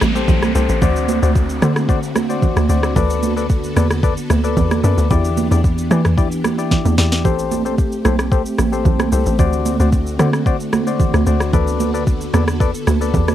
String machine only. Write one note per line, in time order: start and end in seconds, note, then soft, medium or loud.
0.00 0.80 G3 medium
0.00 0.80 A3 medium
0.00 0.80 C4 medium
0.82 5.07 D3 medium
0.82 2.94 A3 medium
0.82 2.94 C4 medium
0.82 5.07 F#4 medium
2.96 7.21 B3 medium
2.96 5.08 A4 medium
5.10 7.23 E3 medium
5.10 7.23 D4 medium
5.10 9.35 G4 medium
7.25 11.49 A3 medium
7.25 11.49 C4 medium
9.39 13.35 D3 medium
9.39 13.35 F#4 medium
11.53 13.35 B3 medium
11.53 13.35 A4 medium